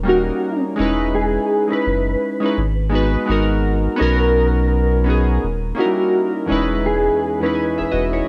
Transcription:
Already playing: sub bass D#1
0.03 synth keys G3 A#3 C#4
0.08 synth keys D#4 A#4, clean electric guitar F#4
0.76 sub bass E1, synth keys G#3 C#4 D#4
0.80 synth keys E4 B4
1.15 clean electric guitar G#4
1.68 synth keys G#3 C#4 D#4, clean electric guitar B4
1.72 synth keys E4 B4
1.86 sub bass F#1
2.40 synth keys G#3 C#4 D#4
2.44 synth keys E4 B4
2.57 sub bass G#1
2.89 synth keys G#3 B3 D#4
2.94 synth keys F#4 B4
3.26 sub bass G#1, synth keys G#3 B3 D#4
3.30 synth keys F#4 A#4
3.96 synth keys B3 C#4 D#4, clean electric guitar A#4
4.00 sub bass B1, synth keys F#4 A#4
5.04 synth keys B3 C#4 D#4
5.09 synth keys F#4 G#4
5.43 sub bass D#1
5.75 synth keys A#3 C#4 D#4, clean electric guitar F#4
5.79 synth keys E4 A#4
5.86 synth keys G3
6.46 synth keys E2 G#3 C#4 D#4
6.50 sub bass E1, synth keys E4 B4
6.86 clean electric guitar G#4
7.40 synth keys E2 G#3 C#4 D#4, clean electric guitar B4
7.45 synth keys E4 B4
7.55 synth keys B4 G#5
7.78 sub bass E1, synth keys G#4 E5
7.92 sub bass E1, synth keys F#4 D#5
8.13 synth keys E4 C#5

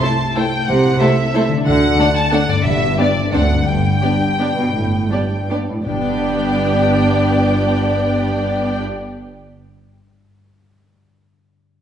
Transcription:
Already playing: harp C3 A3 E4 A4
0.02 viola section A3 E4, french horn section A3 E4, violin section A4 C5 A5
0.36 viola section A3 E4, french horn section A3 E4, violin section A4 C5 G5
0.67 double bass section C2, cello section C3, violin section F#5
1.00 viola section A3 E4, french horn section A3 E4, violin section A4 C5 E5
1.34 french horn section A3 E4, viola section A3 E4, violin section A4 C5
1.48 harp D3
1.52 harp A3
1.57 harp D4
1.62 harp A4
1.66 double bass section D2, cello section D3, violin section F#5
1.98 french horn section A3 D4, viola section A3 D4, violin section A4 D5
2.16 violin section A5
2.32 viola section A3 D4, french horn section A3 D4, violin section A4 D5 F#5
2.47 harp G2, violin section D5
2.52 harp B3
2.56 harp D4
2.61 harp G4
2.65 double bass section G1, timpani G2, cello section G2, violin section E5
2.98 french horn section B3 D4, viola section B3 D4, violin section G4 D5
3.14 harp D3
3.19 harp C4
3.24 harp D4
3.28 harp A4
3.33 cello section D2, double bass section D2, viola section C4 D4, french horn section C4 D4, violin section A4 D5 F#5
3.49 harp G2
3.53 harp B3
3.58 harp D4
3.63 harp G4
3.67 double bass section G1, cello section G2, violin section G5
4.02 cello section G2, french horn section B3 D4, viola section B3 D4, violin section G4 D5
4.39 viola section B3 D4, french horn section B3 D4, violin section G4 D5
4.58 cello section B2
4.75 double bass section G1, cello section A2
5.11 cello section G2, viola section B3 D4, french horn section B3 D4, violin section G4 D5
5.50 viola section B3 D4, french horn section B3 D4, violin section G4 D5
5.69 cello section A2
5.86 double bass section G1, timpani G2, cello section G2, harp G2, viola section B3 D4, french horn section B3 D4, violin section G4 D5 G5
5.94 harp G3
6.01 harp B3
6.08 harp D4
6.15 harp G4
6.22 harp D5

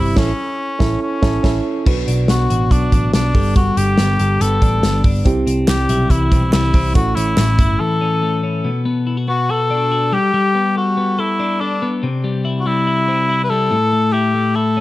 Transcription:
Already playing: picked electric bass G1, clean electric guitar C3 G3 C4 E4, reed electric piano G3 C4 E4 G4, cor anglais E4
0.16 picked electric bass A1, reed electric piano C#4 E4 A4, cor anglais C#4, kick, snare, crash
0.79 picked electric bass A1, reed electric piano C#4 E4 A4, kick, snare
1.02 cor anglais C#4
1.22 picked electric bass A1, reed electric piano C#4 E4 A4, kick, snare
1.43 picked electric bass A1, reed electric piano C#4 E4 A4, kick, snare, crash
1.85 picked electric bass B1, clean electric guitar B2, reed electric piano D4 F#4 B4, kick, crash
2.08 picked electric bass B1, clean electric guitar D4, closed hi-hat
2.28 picked electric bass B1, clean electric guitar B3, cor anglais F#4, snare, closed hi-hat
2.50 picked electric bass A1, clean electric guitar F#4, closed hi-hat
2.71 picked electric bass B1, clean electric guitar F#3, cor anglais D4, kick, closed hi-hat
2.92 picked electric bass A1, clean electric guitar D4, kick, closed hi-hat
3.13 picked electric bass B1, clean electric guitar B3, cor anglais D4, snare, closed hi-hat
3.33 picked electric bass G1, clean electric guitar G3, reed electric piano B3 G4 A4, kick, open hi-hat
3.56 clean electric guitar G3, cor anglais F#4, kick, closed hi-hat
3.77 picked electric bass G1, clean electric guitar D4, cor anglais G4, closed hi-hat
3.98 picked electric bass G1, clean electric guitar B3, snare, closed hi-hat
4.19 picked electric bass G1, clean electric guitar A4, closed hi-hat
4.41 picked electric bass G1, clean electric guitar B3, cor anglais A4, closed hi-hat
4.62 picked electric bass A1, clean electric guitar D4, kick, closed hi-hat
4.83 picked electric bass G1, clean electric guitar B3, snare, closed hi-hat
5.04 picked electric bass G1, clean electric guitar D4, kick, open hi-hat
5.25 picked electric bass C2, clean electric guitar C3, reed electric piano C4 E4 G4, kick, closed hi-hat
5.47 picked electric bass C2, clean electric guitar C4, closed hi-hat
5.68 picked electric bass C2, clean electric guitar G3, cor anglais G4, snare, clap, closed hi-hat
5.89 picked electric bass B1, clean electric guitar E4, closed hi-hat
6.10 picked electric bass C2, clean electric guitar E3, cor anglais E4, kick, closed hi-hat
6.32 picked electric bass B1, clean electric guitar C4, kick, closed hi-hat
6.53 picked electric bass C2, clean electric guitar G3, cor anglais E4, snare, clap, closed hi-hat
6.74 picked electric bass C2, clean electric guitar C4, kick, open hi-hat
6.94 picked electric bass A1, clean electric guitar A2, reed electric piano C#4 E4 A4, cor anglais F#4, kick, closed hi-hat
7.15 picked electric bass A1, clean electric guitar C#4, cor anglais E4, closed hi-hat
7.37 picked electric bass A1, clean electric guitar A3, snare, clap, closed hi-hat
7.59 picked electric bass G1, clean electric guitar E4, kick, closed hi-hat
7.80 clean electric guitar E3, cor anglais A4
8.01 clean electric guitar C#4
8.22 clean electric guitar A3
8.43 clean electric guitar C#4
8.64 clean electric guitar B2
8.85 clean electric guitar B3
9.07 clean electric guitar E4
9.17 clean electric guitar F#4
9.28 clean electric guitar B3, cor anglais F#4
9.49 clean electric guitar F#4, cor anglais A4
9.70 clean electric guitar D4
9.91 clean electric guitar F#4
10.12 clean electric guitar G3, cor anglais G4
10.34 clean electric guitar G3
10.55 clean electric guitar B3
10.76 cor anglais F#4, clean electric guitar A4
10.97 clean electric guitar B3
11.19 cor anglais E4, clean electric guitar A4
11.40 clean electric guitar D4
11.61 cor anglais D4, clean electric guitar A4
11.82 clean electric guitar B3
12.03 clean electric guitar C3
12.24 clean electric guitar G3
12.45 clean electric guitar E4
12.60 cor anglais F#4
12.66 clean electric guitar G3, cor anglais E4
12.87 clean electric guitar E4
13.08 clean electric guitar C4
13.29 clean electric guitar E4
13.44 cor anglais B4
13.50 clean electric guitar G3, cor anglais A4
13.71 clean electric guitar A2
13.93 clean electric guitar A3
14.13 clean electric guitar E4, cor anglais G4
14.34 clean electric guitar A3
14.56 clean electric guitar E4, cor anglais A4
14.77 clean electric guitar C#4

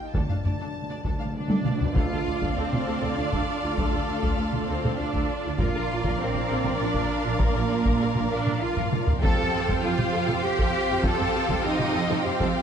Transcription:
0.01 french horn section D#4
0.13 cello section D2, double bass section D2, timpani D3, french horn section D4, viola section D4, violin section A4 A5, taiko
0.28 cello section D2, timpani D3, viola section D4, violin section F5, taiko low-mid
0.35 timpani D3
0.44 cello section D2, double bass section D2, timpani D3, viola section D4, violin section D5, taiko low-mid
0.52 timpani D3
0.59 cello section D2, timpani D3, viola section D4, violin section A4
0.66 timpani D3
0.74 timpani D3
0.82 timpani D3
0.89 cello section D2, timpani D3, viola section D4, violin section D5
0.97 timpani D3
1.04 cello section D2, double bass section D2, timpani D3, viola section D4, violin section A4, taiko
1.11 timpani D3
1.19 cello section D2, timpani D3, viola section D4, violin section F5
1.25 timpani D3
1.33 timpani D3, cello section D4, violin section D5
1.40 timpani D3
1.48 cello section D2, timpani D3, viola section D4, violin section A4, taiko high
1.55 timpani D3
1.62 double bass section D2, cello section D2, timpani D3, violin section F5, taiko mid
1.66 timpani D3, viola section D4
1.78 timpani D3, taiko low
1.85 timpani D3
1.94 double bass section D2, timpani D3, french horn section A3 D4, string section D4 F4 A4 F5, cello section F4, viola section A4 D5, violin section F5, taiko
2.11 double bass section D2, viola section A4
2.26 double bass section D2, viola section F4
2.40 double bass section D2, viola section A4, taiko
2.55 double bass section D2, cello section C4, viola section A4, violin section C5
2.71 double bass section D2, viola section F4, taiko mid
2.86 double bass section D2, viola section A4
3.01 double bass section D2, viola section A4, taiko mid
3.16 double bass section D2, cello section D4, viola section F4, violin section D5
3.32 double bass section D2, viola section A4, taiko
3.63 double bass section D2, viola section F4
3.76 double bass section D2, cello section A3, french horn section A3 D4, violin section A4, viola section A4, taiko
3.92 double bass section D2, viola section A4
4.08 double bass section D2, viola section F4
4.22 double bass section D2, viola section A4, taiko
4.38 double bass section D2, viola section A4
4.53 double bass section D2, viola section F4, taiko mid
4.67 double bass section D2, cello section C4, viola section A4, violin section C5
4.83 double bass section D2, viola section A4, taiko mid
4.98 double bass section D2, cello section D4, viola section F4, violin section D5
5.14 double bass section D2, viola section A4, taiko
5.45 double bass section D2, viola section F4
5.57 double bass section A#1, french horn section A#3 D4, string section D4 F4 A#4 F5, cello section F4, viola section A#4 D5, violin section F5, taiko
5.75 double bass section A#1, viola section A#4
5.91 double bass section A#1, viola section F4
6.04 double bass section A#1, viola section A#4, taiko
6.18 double bass section A#1, cello section C4, viola section A#4, violin section C5
6.34 double bass section A#1, viola section F4, taiko mid
6.50 double bass section A#1, viola section A#4
6.64 double bass section A#1, viola section A#4, taiko mid
6.79 double bass section A#1, cello section D4, viola section F4, violin section D5
6.94 double bass section A#1, viola section A#4, taiko
7.25 double bass section A#1, viola section F4
7.39 double bass section A#1, cello section A#3, french horn section A#3 D4, violin section A#4, viola section A#4, taiko
7.55 double bass section A#1, viola section A#4
7.71 double bass section A#1, viola section F4
7.85 double bass section A#1, viola section A#4, taiko
8.02 double bass section A#1, viola section A#4
8.16 double bass section A#1, viola section F4, taiko mid
8.30 double bass section A#1, cello section D4, viola section A#4, violin section D5
8.46 double bass section A#1, viola section A#4, taiko mid
8.61 double bass section A#1, cello section F4, viola section F4, violin section F5
8.77 double bass section A#1, viola section A#4, taiko low-mid
8.92 taiko mid
9.07 double bass section A#1, viola section F4, taiko low
9.21 double bass section F2, french horn section G3 F4, string section C4 F4 G4 F5, viola section A4 C5, cello section A4, violin section F5 G5 A5, taiko
9.37 double bass section F2, viola section A4
9.52 double bass section F2, viola section G4
9.68 double bass section F2, viola section A4, taiko
9.82 double bass section F2, cello section F4, viola section A4, violin section F5
9.98 double bass section F2, viola section G4, taiko mid
10.13 double bass section F2, viola section A4
10.28 double bass section F2, viola section A4, taiko mid
10.43 double bass section F2, viola section G4, cello section G4, violin section G5
10.58 double bass section F2, viola section A4, taiko
10.88 double bass section F2, viola section G4
11.03 double bass section F2, french horn section G3 F4, viola section A4, cello section A4, violin section A5, taiko
11.19 double bass section F2, viola section A4
11.34 double bass section F2, viola section G4
11.49 double bass section F2, viola section A4, taiko
11.64 double bass section F2, cello section D#4, viola section A4, violin section D#5
11.78 double bass section F2, viola section G4, taiko mid
11.93 double bass section F2, viola section A4
12.09 double bass section F2, viola section A4, taiko mid
12.23 double bass section F2, cello section C4, viola section G4, violin section C5
12.39 double bass section F2, viola section A4, taiko

